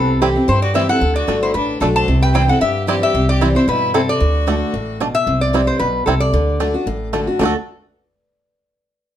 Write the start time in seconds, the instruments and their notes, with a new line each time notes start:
Already playing: upright bass C2, steel-string acoustic guitar C3, fiddle C4, resonator guitar played with a steel bar A4
0.21 steel-string acoustic guitar E3 G3 C4 E4, five-string banjo G3 C4 E4, fiddle C4, resonator guitar played with a steel bar G4
0.36 steel-string acoustic guitar C4 E4
0.48 steel-string acoustic guitar G2, upright bass G2, fiddle E4, resonator guitar played with a steel bar C5
0.62 fiddle F#4, resonator guitar played with a steel bar D5
0.74 steel-string acoustic guitar E3 G3 C4 E4, five-string banjo G3 C4 E4, fiddle G4, resonator guitar played with a steel bar E5
0.89 steel-string acoustic guitar C4 E4, fiddle A4, resonator guitar played with a steel bar F#5
1.01 upright bass D2, steel-string acoustic guitar D3
1.16 fiddle F#4, resonator guitar played with a steel bar D5
1.27 upright bass G1, steel-string acoustic guitar D3 A3 D4 F#4, five-string banjo A3 D4
1.42 fiddle E4, resonator guitar played with a steel bar C5
1.54 upright bass A1, steel-string acoustic guitar A2, fiddle D4, resonator guitar played with a steel bar B4
1.80 upright bass B1, steel-string acoustic guitar D3 A3 D4 F#4, five-string banjo A3 D4, fiddle D4, resonator guitar played with a steel bar A4
1.96 fiddle C5, resonator guitar played with a steel bar A5
2.08 upright bass C2, steel-string acoustic guitar C3
2.22 fiddle B4, resonator guitar played with a steel bar G5
2.34 steel-string acoustic guitar E3 G3 C4 E4, five-string banjo G3 C4 E4, fiddle C5, resonator guitar played with a steel bar G5
2.48 steel-string acoustic guitar C4 E4, fiddle A4, resonator guitar played with a steel bar F#5
2.61 upright bass G2, steel-string acoustic guitar G2, fiddle G4, resonator guitar played with a steel bar E5
2.87 steel-string acoustic guitar E3 G3 C4 E4, five-string banjo G3 C4 E4, fiddle G4, resonator guitar played with a steel bar D5
3.03 fiddle G4, resonator guitar played with a steel bar E5
3.14 upright bass C2, steel-string acoustic guitar C3
3.29 fiddle G4, resonator guitar played with a steel bar D5
3.41 steel-string acoustic guitar E3 G3 C4 E4, five-string banjo G3 C4 E4
3.55 steel-string acoustic guitar C4 E4, fiddle E4, resonator guitar played with a steel bar C5
3.67 upright bass G2, steel-string acoustic guitar B2, fiddle E4, resonator guitar played with a steel bar B4
3.94 steel-string acoustic guitar C3, five-string banjo G3 C4 E4, fiddle C4, resonator guitar played with a steel bar A4
4.09 fiddle F#4, resonator guitar played with a steel bar D5
4.20 upright bass D2, steel-string acoustic guitar D3
4.47 steel-string acoustic guitar D3 A3 D4 F#4, five-string banjo A3 D4
4.73 upright bass A1, steel-string acoustic guitar A2
5.00 steel-string acoustic guitar B2, five-string banjo A3 D4
5.15 resonator guitar played with a steel bar E5
5.27 upright bass C2, steel-string acoustic guitar C3
5.41 resonator guitar played with a steel bar D5
5.53 steel-string acoustic guitar E3 G3 C4 E4, five-string banjo G3 C4 E4
5.67 resonator guitar played with a steel bar C5
5.79 upright bass B1, steel-string acoustic guitar B2, resonator guitar played with a steel bar B4
6.06 upright bass C2, steel-string acoustic guitar C3, five-string banjo G3 C4 E4, resonator guitar played with a steel bar A4
6.20 resonator guitar played with a steel bar D5
6.33 upright bass D2, steel-string acoustic guitar D3
6.60 steel-string acoustic guitar D3 A3 D4 F#4, five-string banjo A3 D4
6.74 steel-string acoustic guitar D4 F#4
6.86 upright bass A1, steel-string acoustic guitar A2
7.13 steel-string acoustic guitar D3 A3 D4 F#4, five-string banjo A3 D4
7.27 steel-string acoustic guitar D4 F#4
7.39 upright bass D2, steel-string acoustic guitar D3 A3 D4 F#4, five-string banjo A3 D4 F#4
7.45 five-string banjo A4